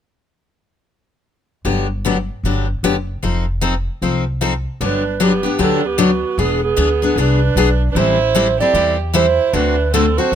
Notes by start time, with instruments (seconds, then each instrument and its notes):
1.65 upright bass G1, steel-string acoustic guitar D3 F#3 B3 D4 G4
2.05 steel-string acoustic guitar D3 F#3 B3 D4 G4
2.43 upright bass G1, steel-string acoustic guitar D3 F#3 B3 D4 G4
2.83 upright bass F#1, steel-string acoustic guitar D3 F#3 B3 D4 G4
3.23 upright bass F1, steel-string acoustic guitar F3 C4 D#4 A4
3.61 steel-string acoustic guitar F3 C4 D#4 A4
4.02 upright bass C2, steel-string acoustic guitar F3 C4 D#4 A4
4.41 steel-string acoustic guitar F3 C4 D#4 A4
4.81 upright bass G1, steel-string acoustic guitar D3 F#3 B3 D4 G4, violin D4
4.86 clarinet B4
5.20 steel-string acoustic guitar D3 F#3 B3 D4 G4, violin B3, clarinet G4
5.43 steel-string acoustic guitar B3 D4 G4
5.59 upright bass D2, steel-string acoustic guitar D3 F#3 B3 D4 G4, violin D4
5.63 clarinet A4
5.86 violin B3, clarinet G4
5.98 steel-string acoustic guitar D3 F#3 B3 D4 G4, violin B3, clarinet F#4
6.38 upright bass E1, steel-string acoustic guitar E3 B3 D4 G#4, violin B3, clarinet G#4
6.64 violin B3, clarinet G#4
6.77 upright bass D2, steel-string acoustic guitar E3 B3 D4 G#4
7.02 steel-string acoustic guitar B3 D4 G#4
7.16 upright bass C2, steel-string acoustic guitar E3 B3 D4 G#4, violin D4, clarinet B4
7.56 upright bass B1, steel-string acoustic guitar E3 B3 D4 G#4
7.92 upright bass A1, violin D4, clarinet B4
7.96 steel-string acoustic guitar E3 G3 C4 E4 A4, violin E4, clarinet C5
8.35 steel-string acoustic guitar E3 G3 C4 E4 A4
8.60 steel-string acoustic guitar C4 E4 A4, violin G4, clarinet D5
8.74 upright bass E2, steel-string acoustic guitar E3 G3 C4 E4 A4
9.13 steel-string acoustic guitar E3 G3 C4 E4 A4, violin E4, clarinet C5
9.53 upright bass D2, steel-string acoustic guitar D3 A3 C4 F#4 A4, violin D4, clarinet B4
9.93 steel-string acoustic guitar D3 A3 C4 F#4 A4, violin C4, clarinet A4
10.17 steel-string acoustic guitar C4 F#4 A4, violin F#4, clarinet C5
10.32 upright bass A1